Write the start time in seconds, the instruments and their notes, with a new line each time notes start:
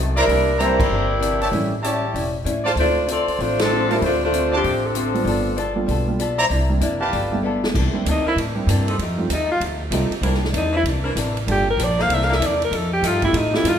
Already playing: upright bass C2, hollow-body jazz guitar F#2 D#3
0.00 hollow-body jazz guitar A3 C4
0.16 saxophone section G3 D4 E4 A#4, trumpet section E4 C5 D5 A#5, open hi-hat
0.27 upright bass C2, hollow-body jazz guitar C3 E3 A#3, grand piano G3 A#3 C4 D4 E4, open hi-hat
0.31 hollow-body jazz guitar D4
0.59 hollow-body jazz guitar C3 E3 A#3 D4, grand piano G3 A#3 C4 D4 G4, saxophone section A#3 E4 G4 C5, trumpet section E4 C5 D5 A#5, closed hi-hat
0.80 saxophone section A#3 E4 G4 D5, kick, crash
0.90 upright bass G1, hollow-body jazz guitar C3 E3 A#3 D4
1.20 hollow-body jazz guitar C3 E3 A#3 D4, closed hi-hat
1.40 trumpet section G4 C#5 E5 A5, open hi-hat
1.50 upright bass A1, hollow-body jazz guitar A2 G3 C#4 E4, grand piano E3 G3 A3 C#4 E4, open hi-hat
1.82 hollow-body jazz guitar A2 G3 C#4 E4, trumpet section G4 C#5 E5 A5, closed hi-hat
2.13 upright bass E1, hollow-body jazz guitar A2 G3 C#4 E4, open hi-hat
2.44 hollow-body jazz guitar A2 G3 C#4 E4, upright bass A2, closed hi-hat
2.64 trumpet section F4 C5 D5 A5, snare
2.75 upright bass D2, hollow-body jazz guitar D3 A3 C4 F4, open hi-hat
2.79 saxophone section A3 D4 F4 C5
3.06 hollow-body jazz guitar D3 A3 C4 F4, closed hi-hat
3.10 saxophone section C4 F4 A4 D5
3.28 muted upright bass stroke, open hi-hat
3.37 upright bass A1, hollow-body jazz guitar D3 A3 C4, saxophone section A3 D4 F4 C5, open hi-hat
3.41 hollow-body jazz guitar F4
3.59 saxophone section F3 C4 D4 A4, snare, ride
3.69 hollow-body jazz guitar D3 A3 C4 F4
3.89 grand piano F3 A3 C4 D4 E4, saxophone section G3 C4 E4 A#4, trumpet section F4 C5 D5 A5, open hi-hat
4.01 upright bass D2, hollow-body jazz guitar D3 A3 C4 F4, saxophone section A3 D4 F4 C5, open hi-hat
4.23 saxophone section A3 D4 F4 C5
4.32 hollow-body jazz guitar D3 A3 C4 F4, closed hi-hat
4.52 saxophone section F3 C4 D4 G4, trumpet section F4 C5 D5 A5
4.63 upright bass A1, hollow-body jazz guitar D3 A3 C4 F4, open hi-hat
4.85 saxophone section F3 C4 D4 A4
4.95 hollow-body jazz guitar D3 A3 C4 F4, closed hi-hat
5.14 grand piano G3 A3 B3 D4 F4, open hi-hat
5.25 upright bass G1, hollow-body jazz guitar G3 B3 F4 A4, open hi-hat
5.56 hollow-body jazz guitar G3 B3 F4 A4, closed hi-hat
5.75 grand piano G3 A3 B3 D4 F4
5.86 upright bass B1, hollow-body jazz guitar G3 B3 F4, open hi-hat
5.90 hollow-body jazz guitar A4
6.07 grand piano G3 A3 B3 D4 F4
6.19 hollow-body jazz guitar G3 B3 F4 A4, closed hi-hat
6.38 trumpet section E4 C5 D5 A#5, open hi-hat
6.49 upright bass C2, hollow-body jazz guitar C3 A#3 D4 E4, open hi-hat
6.69 grand piano G3 A#3 C4 D4 E4
6.80 upright bass F#1, hollow-body jazz guitar C3 A#3 D4 E4, closed hi-hat
7.01 trumpet section G4 B4 F5 A5
7.11 upright bass G1, hollow-body jazz guitar G3 B3 F4 A4, open hi-hat
7.31 grand piano G3 A3 B3 D4 E4
7.43 hollow-body jazz guitar G3 B3 F4 A4
7.64 snare
7.74 upright bass C2, hollow-body jazz guitar C3 E3 A#3 D4, kick, crash
7.93 grand piano G3 A#3 C4 D4 E4
8.05 upright bass D2, hollow-body jazz guitar C3 E3 A#3 D4, hi-hat pedal, ride
8.11 alto saxophone D#4
8.25 saxophone section E3 C4 D4 A#4, alto saxophone E4, muted upright bass stroke
8.36 upright bass A2, hollow-body jazz guitar C3 E3 A#3 D4, ride
8.55 grand piano G3 A#3 C4 D4 E4
8.67 upright bass G2, hollow-body jazz guitar C3 E3 A#3 D4, hi-hat pedal, ride
8.87 saxophone section F3 A3 D#4 A4, ride
8.98 upright bass F2, hollow-body jazz guitar F3 A3 D#4, ride
9.03 hollow-body jazz guitar G4
9.18 grand piano G3 A3 C4 D#4 F4
9.29 upright bass D#2, hollow-body jazz guitar F3 A3 D#4 G4, hi-hat pedal, ride
9.34 alto saxophone D#4
9.51 alto saxophone F4
9.60 upright bass D2, hollow-body jazz guitar F3 A3 D#4 G4, ride
9.91 upright bass C2, hollow-body jazz guitar F3 A3 D#4 G4, grand piano G3 A3 C4 D#4 F4, hi-hat pedal, ride
10.10 muted upright bass stroke, ride
10.21 upright bass C2, hollow-body jazz guitar C3, saxophone section E3 C4 D4 A#4, grand piano G3 A#3 C4 D4 E4, ride
10.25 hollow-body jazz guitar E3 A#3 D4
10.34 snare
10.44 snare
10.53 upright bass E2, hollow-body jazz guitar C3 E3 A#3 D4, hi-hat pedal, ride
10.57 alto saxophone D#4
10.72 saxophone section E3 C4 D4 E4
10.77 alto saxophone E4
10.83 upright bass C2, hollow-body jazz guitar C3 E3 A#3, ride
10.88 hollow-body jazz guitar D4
11.03 saxophone section E3 C4 D4 A#4
11.15 upright bass A1, hollow-body jazz guitar C3 E3 A#3 D4, hi-hat pedal, ride
11.37 ride
11.46 upright bass G1, hollow-body jazz guitar G2 F3 A#3 D4, grand piano G3 A#3 D4 F4 A4, ride
11.52 alto saxophone G4
11.70 alto saxophone A#4
11.77 upright bass A#1, hollow-body jazz guitar G2 F3 A#3 D4, hi-hat pedal, ride
11.84 alto saxophone D5
11.98 saxophone section A#3 D4 E4 C5, alto saxophone F5, snare
12.08 upright bass C2, hollow-body jazz guitar C3 E3 A#3, ride
12.12 hollow-body jazz guitar D4, alto saxophone E5
12.22 alto saxophone F5, snare
12.28 saxophone section A#3 D4 E4 A#4, snare
12.35 alto saxophone E5
12.39 upright bass E2, hollow-body jazz guitar C3 E3 A#3 D4, hi-hat pedal, ride
12.46 alto saxophone D5
12.62 alto saxophone A#4, ride
12.70 upright bass F2, hollow-body jazz guitar F3 A3 D#4 G4, ride
12.76 alto saxophone A4
12.93 alto saxophone G4
13.02 upright bass G2, hollow-body jazz guitar F3 A3 D#4 G4, saxophone section G3 D#4 F4 A4, hi-hat pedal, ride
13.07 alto saxophone F4
13.22 grand piano A3 C4 D#4 F4 G4, alto saxophone E4, kick, ride
13.33 upright bass A2, hollow-body jazz guitar F3 A3 D#4 G4, ride
13.37 alto saxophone D#4
13.52 grand piano A3 C4 D#4 F4 G4, alto saxophone E4, snare
13.64 upright bass G2, hollow-body jazz guitar F3 A3 D#4 G4, hi-hat pedal, ride
13.69 alto saxophone F4